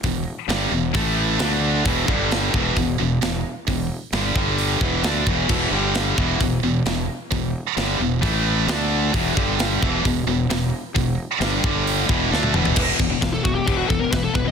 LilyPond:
<<
  \new Staff \with { instrumentName = "Lead electric guitar" } { \time 4/4 \key e \minor \tempo 4 = 132 r1 | r1 | r1 | r1 |
r1 | r1 | r1 | r4 r16 a'16 fis'16 g'16 g'16 fis'16 a'16 ais'16 b'16 a'16 b'16 dis''16 | }
  \new Staff \with { instrumentName = "Distorted electric guitar" } { \clef bass \time 4/4 \key e \minor <e, b,>8 r8 <g, d g>8 <e, b,>8 <a, e a>4 <d a d'>4 | <e, b, e>8 <g, d g>4 <e, b, e>8 <e, b,>8 <e, b,>8 <e, b,>8 r8 | <e, b,>8 r8 <g, d g>8 <g, d g>4 <e, b, e>8 <d a d'>8 <e, b, e>8 | <e, b, e>8 <g, d g>4 <e, b, e>8 <e, b,>8 <e, b,>8 <e, b,>8 r8 |
<e, b,>8 r8 <g, d g>8 <e, b,>8 <a, e a>4 <d a d'>4 | <e, b, e>8 <g, d g>4 <e, b, e>8 <e, b,>8 <e, b,>8 <e, b,>8 r8 | <e, b,>8 r8 <g, d g>8 <g, d g>4 <e, b, e>8 <d a d'>8 <e, b, e>8 | <e, b, e>8 <e, b,>16 <e, b,>16 <e, b,>8 <e, b,>16 <e, b,>16 <e, b, e>8 <e, b,>16 <e, b,>16 <e, b,>8 <e, b,>16 <e, b,>16 | }
  \new Staff \with { instrumentName = "Distorted electric guitar" } { \clef bass \time 4/4 \key e \minor <e, b,>8 r8 <g, d g>8 <e, b,>8 <a, e a>4 <d a d'>4 | <e, b, e>8 <g, d g>4 <e, b, e>8 <e, b,>8 <e, b,>8 <e, b,>8 r8 | <e, b,>8 r8 <g, d g>8 <g, d g>4 <e, b, e>8 <d a d'>8 <e, b, e>8 | <e, b, e>8 <g, d g>4 <e, b, e>8 <e, b,>8 <e, b,>8 <e, b,>8 r8 |
<e, b,>8 r8 <g, d g>8 <e, b,>8 <a, e a>4 <d a d'>4 | <e, b, e>8 <g, d g>4 <e, b, e>8 <e, b,>8 <e, b,>8 <e, b,>8 r8 | <e, b,>8 r8 <g, d g>8 <g, d g>4 <e, b, e>8 <d a d'>8 <e, b, e>8 | r1 | }
  \new Staff \with { instrumentName = "Fingered electric bass" } { \clef bass \time 4/4 \key e \minor e,,8 r8 g,,8 e,,8 a,,4 d,4 | e,,8 g,,4 e,,8 e,,8 e,,8 e,,8 r8 | e,,8 r8 g,,8 g,,4 e,,8 d,8 e,,8 | e,,8 g,,4 e,,8 e,,8 e,,8 e,,8 r8 |
e,,8 r8 g,,8 e,,8 a,,4 d,4 | e,,8 g,,4 e,,8 e,,8 e,,8 e,,8 r8 | e,,8 r8 g,,8 g,,4 e,,8 d,8 e,,8 | e,,8 e,,8 e,,8 e,,8 e,,8 e,,8 e,,8 e,,8 | }
  \new DrumStaff \with { instrumentName = "Drums" } \drummode { \time 4/4 <hho bd>4 <hho sn>4 <hho bd>4 <hho sn>4 | <hho bd>8 bd8 <hho sn>8 bd8 <hho bd>4 <hho sn>4 | <hho bd>4 <hho sn>8 bd8 hho8 bd8 <hho sn>8 bd8 | <cymc bd>4 <hho sn>8 bd8 <hho bd>4 <hho sn>4 |
<hho bd>4 <hho sn>4 <hho bd>4 <hho sn>4 | <hho bd>8 bd8 <hho sn>8 bd8 <hho bd>4 <hho sn>4 | <hho bd>4 <hho sn>8 bd8 hho8 bd8 sn16 tommh16 toml16 tomfh16 | <cymc bd>8 bd8 <cymc bd sn>8 bd8 <cymc bd>8 bd8 <cymc bd sn>8 bd8 | }
>>